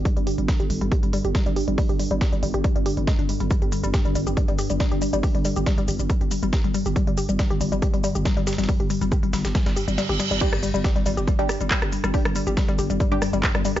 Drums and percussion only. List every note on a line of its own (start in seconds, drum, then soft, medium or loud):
0.05 kick loud
0.05 closed hi-hat medium
0.17 closed hi-hat medium
0.27 closed hi-hat medium
0.27 open hi-hat loud
0.38 closed hi-hat medium
0.48 kick loud
0.48 snare loud
0.48 closed hi-hat medium
0.60 closed hi-hat medium
0.70 closed hi-hat medium
0.70 open hi-hat loud
0.81 closed hi-hat medium
0.92 kick loud
0.92 closed hi-hat medium
1.03 closed hi-hat medium
1.03 closed hi-hat soft
1.13 closed hi-hat medium
1.13 open hi-hat loud
1.25 closed hi-hat medium
1.35 kick loud
1.35 snare loud
1.35 closed hi-hat medium
1.46 closed hi-hat medium
1.56 closed hi-hat medium
1.56 open hi-hat loud
1.68 closed hi-hat medium
1.78 kick loud
1.78 closed hi-hat medium
1.78 open hi-hat medium
1.89 closed hi-hat medium
2.00 closed hi-hat medium
2.00 open hi-hat loud
2.11 closed hi-hat medium
2.21 kick loud
2.21 snare loud
2.21 closed hi-hat medium
2.33 closed hi-hat medium
2.43 closed hi-hat medium
2.43 open hi-hat loud
2.54 closed hi-hat medium
2.64 kick loud
2.64 closed hi-hat medium
2.76 closed hi-hat medium
2.86 closed hi-hat medium
2.86 open hi-hat loud
2.97 closed hi-hat medium
3.07 kick loud
3.07 snare loud
3.07 closed hi-hat medium
3.19 closed hi-hat medium
3.29 closed hi-hat medium
3.29 open hi-hat medium
3.40 closed hi-hat medium
3.40 closed hi-hat soft
3.51 kick loud
3.51 closed hi-hat medium
3.51 shaker soft
3.62 closed hi-hat medium
3.72 closed hi-hat medium
3.72 open hi-hat loud
3.72 shaker medium
3.84 closed hi-hat medium
3.84 shaker soft
3.94 kick loud
3.94 snare loud
3.94 closed hi-hat medium
3.94 shaker soft
4.05 closed hi-hat medium
4.15 closed hi-hat medium
4.15 open hi-hat loud
4.15 shaker medium
4.27 closed hi-hat medium
4.27 shaker soft
4.37 kick loud
4.37 closed hi-hat medium
4.37 shaker soft
4.48 closed hi-hat medium
4.48 closed hi-hat soft
4.59 closed hi-hat medium
4.59 open hi-hat loud
4.59 shaker medium
4.70 closed hi-hat medium
4.70 shaker soft
4.80 kick loud
4.80 snare loud
4.80 closed hi-hat medium
4.80 shaker soft
4.91 closed hi-hat medium
5.02 closed hi-hat medium
5.02 open hi-hat medium
5.02 shaker medium
5.13 closed hi-hat medium
5.13 shaker soft
5.23 kick loud
5.23 closed hi-hat medium
5.23 open hi-hat medium
5.23 shaker soft
5.35 closed hi-hat medium
5.45 closed hi-hat medium
5.45 open hi-hat loud
5.45 shaker medium
5.56 closed hi-hat medium
5.56 shaker soft
5.66 kick loud
5.66 snare loud
5.66 closed hi-hat medium
5.66 shaker soft
5.78 closed hi-hat medium
5.88 closed hi-hat medium
5.88 open hi-hat loud
5.88 shaker medium
5.99 closed hi-hat medium
5.99 shaker soft
6.10 kick loud
6.10 closed hi-hat medium
6.10 shaker soft
6.21 closed hi-hat medium
6.31 closed hi-hat medium
6.31 open hi-hat loud
6.31 shaker medium
6.43 closed hi-hat medium
6.43 shaker soft
6.53 kick loud
6.53 snare loud
6.53 closed hi-hat medium
6.53 shaker soft
6.64 closed hi-hat medium
6.74 closed hi-hat medium
6.74 open hi-hat medium
6.74 shaker medium
6.86 closed hi-hat medium
6.86 closed hi-hat soft
6.86 shaker soft
6.96 kick loud
6.96 closed hi-hat medium
6.96 shaker soft
7.07 closed hi-hat medium
7.17 closed hi-hat medium
7.17 open hi-hat loud
7.17 shaker medium
7.29 closed hi-hat medium
7.29 shaker soft
7.39 kick loud
7.39 snare loud
7.39 closed hi-hat medium
7.39 shaker soft
7.50 closed hi-hat medium
7.61 closed hi-hat medium
7.61 open hi-hat medium
7.61 shaker medium
7.72 closed hi-hat medium
7.72 shaker soft
7.82 kick loud
7.82 closed hi-hat medium
7.82 shaker soft
7.94 closed hi-hat medium
7.94 closed hi-hat soft
8.04 closed hi-hat medium
8.04 open hi-hat loud
8.04 shaker medium
8.15 closed hi-hat medium
8.15 shaker soft
8.25 kick loud
8.25 snare loud
8.25 closed hi-hat medium
8.25 shaker soft
8.37 closed hi-hat medium
8.47 snare medium
8.47 closed hi-hat medium
8.47 open hi-hat medium
8.47 shaker medium
8.53 snare medium
8.53 closed hi-hat medium
8.58 snare medium
8.58 closed hi-hat medium
8.58 shaker soft
8.64 snare medium
8.64 closed hi-hat medium
8.69 kick loud
8.69 closed hi-hat medium
8.69 open hi-hat medium
8.69 shaker soft
8.80 closed hi-hat medium
8.90 closed hi-hat medium
8.90 open hi-hat loud
8.90 shaker medium
9.02 closed hi-hat soft
9.02 closed hi-hat medium
9.02 shaker soft
9.12 kick loud
9.12 closed hi-hat medium
9.12 shaker soft
9.23 closed hi-hat medium
9.33 snare loud
9.33 closed hi-hat medium
9.33 open hi-hat medium
9.33 shaker medium
9.45 snare loud
9.45 closed hi-hat medium
9.45 shaker soft
9.55 kick loud
9.55 snare loud
9.55 closed hi-hat medium
9.55 shaker soft
9.66 snare loud
9.66 closed hi-hat medium
9.77 closed hi-hat medium
9.77 open hi-hat loud
9.77 shaker medium
9.88 closed hi-hat medium
9.88 shaker soft
9.98 snare loud
9.98 closed hi-hat medium
9.98 shaker soft
10.09 closed hi-hat medium
10.20 snare loud
10.20 closed hi-hat medium
10.20 open hi-hat medium
10.20 shaker medium
10.31 closed hi-hat medium
10.31 closed hi-hat soft
10.31 shaker soft
10.41 kick loud
10.41 closed hi-hat medium
10.41 crash loud
10.41 shaker soft
10.53 cross-stick medium
10.53 closed hi-hat medium
10.63 closed hi-hat medium
10.63 open hi-hat loud
10.63 shaker medium
10.74 closed hi-hat medium
10.74 shaker soft
10.84 kick loud
10.84 snare loud
10.84 closed hi-hat medium
10.84 shaker soft
10.96 closed hi-hat medium
11.06 closed hi-hat medium
11.06 open hi-hat loud
11.06 shaker medium
11.17 closed hi-hat medium
11.17 shaker soft
11.28 kick loud
11.28 closed hi-hat medium
11.28 shaker soft
11.39 closed hi-hat soft
11.39 closed hi-hat medium
11.49 cross-stick medium
11.49 closed hi-hat medium
11.49 open hi-hat loud
11.49 shaker medium
11.61 closed hi-hat medium
11.61 shaker soft
11.71 kick loud
11.71 snare loud
11.71 clap loud
11.71 closed hi-hat medium
11.71 shaker soft
11.82 cross-stick medium
11.82 closed hi-hat medium
11.92 closed hi-hat medium
11.92 open hi-hat medium
11.92 shaker medium
12.04 cross-stick medium
12.04 closed hi-hat medium
12.04 shaker soft
12.14 kick loud
12.14 closed hi-hat medium
12.14 open hi-hat medium
12.14 shaker soft
12.25 cross-stick loud
12.25 closed hi-hat medium
12.36 closed hi-hat medium
12.36 open hi-hat loud
12.36 shaker medium
12.47 closed hi-hat medium
12.47 shaker soft
12.57 kick loud
12.57 snare loud
12.57 closed hi-hat medium
12.57 shaker soft
12.68 closed hi-hat medium
12.79 closed hi-hat medium
12.79 open hi-hat loud
12.79 shaker medium
12.90 closed hi-hat medium
12.90 shaker soft
13.00 kick loud
13.00 closed hi-hat medium
13.00 shaker soft
13.12 closed hi-hat medium
13.22 cross-stick medium
13.22 closed hi-hat medium
13.22 open hi-hat loud
13.22 shaker medium
13.33 closed hi-hat medium
13.33 shaker soft
13.43 kick loud
13.43 snare loud
13.43 clap loud
13.43 closed hi-hat medium
13.43 shaker soft
13.55 cross-stick medium
13.55 closed hi-hat medium
13.65 closed hi-hat medium
13.65 open hi-hat loud
13.65 shaker medium
13.76 cross-stick medium
13.76 closed hi-hat medium
13.76 closed hi-hat soft
13.76 shaker soft